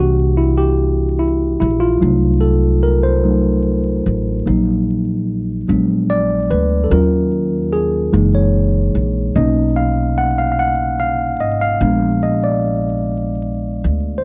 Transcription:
Already playing: upright bass C2, tine electric piano E3 A#3 D4 F#4 G4
0.37 tine electric piano E4
0.57 tine electric piano G4
1.19 tine electric piano E4
1.60 upright bass A#1, tine electric piano E4
1.80 tine electric piano F4
2.01 upright bass C2, tine electric piano F#3 A3 D#4
2.41 tine electric piano A4
2.83 tine electric piano A#4
3.03 tine electric piano C5
3.24 tine electric piano F#3 A3 D#4
4.06 upright bass A1
4.46 upright bass A#1, tine electric piano F#3 A#3 D#4
5.68 upright bass A#1, tine electric piano F#3 G#3 B3 D4
6.10 tine electric piano D5
6.51 upright bass D2, tine electric piano B4
6.84 tine electric piano A4
6.91 upright bass D#2, tine electric piano F#3 C#4 F4 A#4
7.72 tine electric piano G#4
8.12 upright bass F#1, tine electric piano E3 G#3 A#3 D#4
8.35 tine electric piano C#5
8.95 upright bass A#1
9.35 upright bass B1, tine electric piano A#3 C#4 D#4 D#5
9.76 tine electric piano F5
10.18 tine electric piano F#5
10.38 tine electric piano F5
10.52 tine electric piano F5
10.59 tine electric piano F#5
11.00 tine electric piano F5
11.40 upright bass G#1, tine electric piano D#5
11.61 tine electric piano F5
11.81 upright bass A#1, tine electric piano G#3 B3 D4
12.23 tine electric piano D#5
12.44 tine electric piano D5
13.84 upright bass D2
14.18 tine electric piano C5

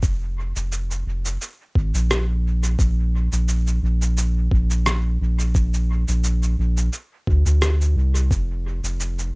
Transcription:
Already playing: sub bass F1
0.03 kick, cabasa
0.56 sub bass F1, cabasa
0.72 cabasa
0.91 cabasa
1.06 sub bass F1
1.26 cabasa
1.42 cabasa
1.75 sub bass G#1, kick
1.94 sub bass A#1, cabasa
2.11 cross-stick, cabasa
2.64 cabasa
2.79 sub bass A#1, kick, cabasa
3.32 sub bass A#1, cabasa
3.49 cabasa
3.67 cabasa
3.82 sub bass A#1
4.02 cabasa
4.18 cabasa
4.51 sub bass A#1, kick
4.71 cabasa
4.86 cross-stick, cabasa
5.21 sub bass A#1
5.39 cabasa
5.55 kick, cabasa
5.74 cabasa
6.08 sub bass A#1, cabasa
6.24 cabasa
6.43 cabasa
6.58 sub bass A#1
6.77 cabasa
6.93 cabasa
7.27 sub bass D2, kick
7.45 sub bass D2, cabasa
7.62 cross-stick, cabasa
7.81 cabasa
7.96 sub bass C2
8.15 cabasa
8.31 sub bass F1, kick, cabasa
8.83 sub bass F1, cabasa
9.00 cabasa
9.19 cabasa

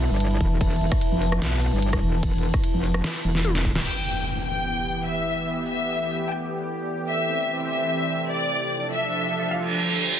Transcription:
Already playing: ambient pad E4 B4 E5 A5
0.00 closed hi-hat
0.10 wobble bass G1
0.20 closed hi-hat, ride
0.31 closed hi-hat
0.41 wobble bass E1, kick
0.61 wobble bass E1, kick, closed hi-hat, ride
0.71 closed hi-hat
0.76 closed hi-hat
0.81 wobble bass E1, closed hi-hat
0.92 kick, cross-stick
1.01 closed hi-hat, ride
1.12 wobble bass F1
1.22 open hi-hat
1.32 cross-stick
1.42 wobble bass B1, snare, closed hi-hat, ride
1.62 closed hi-hat
1.73 wobble bass G1
1.82 closed hi-hat, ride
1.93 kick, cross-stick, closed hi-hat
2.03 wobble bass E1
2.23 kick, closed hi-hat, ride
2.34 wobble bass E1, closed hi-hat
2.38 closed hi-hat
2.43 closed hi-hat
2.54 kick, cross-stick, closed hi-hat
2.64 closed hi-hat, ride
2.74 wobble bass F1
2.84 open hi-hat
2.94 cross-stick
3.04 snare, closed hi-hat, ride
3.24 wobble bass E1, closed hi-hat
3.35 snare
3.45 closed hi-hat, high tom, ride
3.55 snare, closed hi-hat
3.65 kick
3.75 snare
3.85 supersaw synth E3 B3 G4, violin section G5, crash, impact
4.09 ambient pad A4 D5
4.27 ambient pad G5
4.46 violin section G5
5.07 violin section E5
5.68 violin section E5
6.28 violin section G5
7.09 ambient pad C3, supersaw synth E3 C4, violin section E5
7.70 violin section E5
8.31 violin section D5
8.72 supersaw synth F3 D4 A4, ambient pad D4
8.83 ambient pad G4 C5
8.92 violin section E5
9.53 violin section F5, reverse cymbal

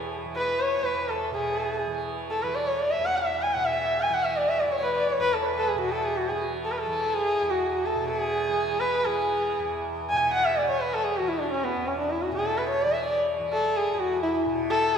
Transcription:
Already playing: tanpura E2 B2 E3
0.25 tanpura E3
0.36 sarangi B4
0.61 sarangi C#5
0.82 tanpura E2, sarangi B4
1.09 sarangi A4
1.31 tanpura B2, sarangi G#4
1.87 tanpura E3
2.30 sarangi A4
2.43 tanpura E3, sarangi B4
2.55 sarangi D5
2.67 sarangi C#5
2.79 sarangi D5
2.91 sarangi E5
2.99 tanpura E2
3.05 sarangi F#5
3.17 sarangi E5
3.41 sarangi G#5
3.53 tanpura B2, sarangi F#5
3.65 sarangi E5
4.01 sarangi G#5
4.09 tanpura E3
4.13 sarangi F#5
4.24 sarangi E5
4.37 sarangi D5
4.48 sarangi E5
4.59 sarangi D5
4.65 tanpura E3
4.71 sarangi C#5
4.79 sarangi B4 C#5
4.96 sarangi D5
5.08 sarangi C#5
5.19 tanpura E2, sarangi B4
5.33 sarangi A4
5.42 sarangi B4 C#5
5.57 sarangi A4
5.68 sarangi G#4
5.75 tanpura B2
5.80 sarangi F#4
5.91 sarangi A4
6.04 sarangi G#4
6.16 sarangi F#4
6.28 tanpura E3, sarangi G#4
6.65 sarangi A4
6.71 sarangi B4
6.78 sarangi A4
6.87 tanpura E3
7.13 sarangi G#4
7.42 tanpura E2
7.50 sarangi F#4
7.85 sarangi A4
7.95 tanpura B2
8.09 sarangi G#4
8.49 tanpura E3
8.80 sarangi B4
9.04 tanpura E3, sarangi G#4
9.59 tanpura E2
10.10 tanpura B2, sarangi G#5
10.33 sarangi F#5
10.45 sarangi E5
10.58 sarangi D5
10.68 tanpura E3, sarangi C#5
10.80 sarangi B4
10.94 sarangi A4
11.05 sarangi G#4
11.17 sarangi F#4
11.22 tanpura E3
11.28 sarangi E4
11.40 sarangi D4
11.52 sarangi C#4
11.63 sarangi B3
11.77 tanpura E2
11.86 sarangi C#4
11.99 sarangi D4
12.10 sarangi E4
12.22 sarangi F#4
12.31 tanpura B2, sarangi G#4
12.46 sarangi A4
12.57 sarangi B4
12.69 sarangi C#5
12.82 tanpura E3, sarangi D5
12.93 sarangi E5
13.05 sarangi D5
13.40 tanpura E3
13.53 sarangi A4
13.77 sarangi G#4
13.93 tanpura E2, sarangi G#4
13.99 sarangi F#4
14.22 sarangi E4
14.46 tanpura B2
14.70 sarangi A4

